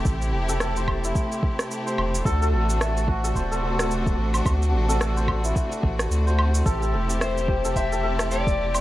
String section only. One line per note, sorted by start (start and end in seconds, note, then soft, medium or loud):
0.00 2.21 C3 medium
0.00 8.81 A3 medium
0.00 2.21 E4 medium
0.00 2.22 G4 medium
2.25 6.62 C3 medium
2.25 6.62 D4 medium
2.25 6.62 F#4 medium
6.66 8.81 C3 medium
6.66 8.81 E4 medium
6.66 8.81 G4 medium